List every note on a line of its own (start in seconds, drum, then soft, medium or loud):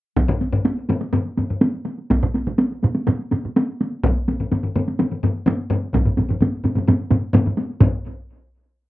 0.17 taiko medium
0.17 taiko high medium
0.28 taiko low-mid medium
0.28 taiko high soft
0.41 taiko high soft
0.53 taiko low-mid medium
0.53 taiko high soft
0.65 taiko high medium
0.77 taiko high soft
0.89 taiko low-mid medium
0.89 taiko high medium
1.01 taiko high soft
1.13 taiko low-mid medium
1.13 taiko high medium
1.25 taiko high soft
1.37 taiko low-mid medium
1.37 taiko high medium
1.50 taiko low-mid medium
1.50 taiko high soft
1.61 taiko high medium
1.74 taiko high soft
1.85 taiko high soft
1.98 taiko high soft
2.10 taiko medium
2.10 taiko high medium
2.23 taiko mid medium
2.34 taiko high medium
2.46 taiko mid medium
2.46 taiko high soft
2.58 taiko high medium
2.71 taiko high soft
2.83 taiko mid medium
2.83 taiko high soft
2.95 taiko high soft
3.07 taiko mid medium
3.07 taiko high medium
3.19 taiko high soft
3.31 taiko mid medium
3.31 taiko high medium
3.44 taiko mid medium
3.44 taiko high soft
3.56 taiko high medium
3.69 taiko high soft
3.81 taiko high soft
3.92 taiko high soft
4.04 taiko medium
4.04 taiko low-mid loud
4.04 taiko high medium
4.16 taiko high soft
4.28 taiko low-mid medium
4.28 taiko high medium
4.40 taiko low-mid medium
4.40 taiko high soft
4.52 taiko low-mid medium
4.52 taiko high medium
4.64 taiko low-mid medium
4.64 taiko high soft
4.76 taiko low-mid medium
4.76 taiko high soft
4.88 taiko high soft
5.00 taiko low-mid medium
5.00 taiko high medium
5.12 taiko low-mid medium
5.12 taiko high soft
5.23 taiko low-mid medium
5.23 taiko high medium
5.46 taiko low-mid medium
5.46 taiko high medium
5.59 taiko high soft
5.70 taiko low-mid medium
5.70 taiko high soft
5.83 taiko high soft
5.94 taiko medium
5.94 taiko low-mid medium
5.94 taiko mid medium
5.94 taiko high medium
6.06 taiko low-mid medium
6.06 taiko mid medium
6.06 taiko high soft
6.18 taiko low-mid medium
6.18 taiko mid medium
6.18 taiko high medium
6.29 taiko low-mid medium
6.29 taiko mid medium
6.29 taiko high soft
6.41 taiko low-mid medium
6.41 taiko mid medium
6.41 taiko high medium
6.64 taiko low-mid medium
6.64 taiko mid medium
6.64 taiko high medium
6.76 taiko low-mid medium
6.76 taiko mid medium
6.76 taiko high soft
6.88 taiko low-mid medium
6.88 taiko mid medium
6.88 taiko high medium
6.99 taiko high soft
7.11 taiko low-mid medium
7.11 taiko mid medium
7.11 taiko high medium
7.34 taiko low-mid loud
7.34 taiko mid medium
7.34 taiko high medium
7.46 taiko low-mid medium
7.46 taiko mid medium
7.58 taiko high medium
7.70 taiko high soft
7.81 taiko medium
7.81 taiko low-mid loud
7.81 taiko mid medium
7.81 taiko high medium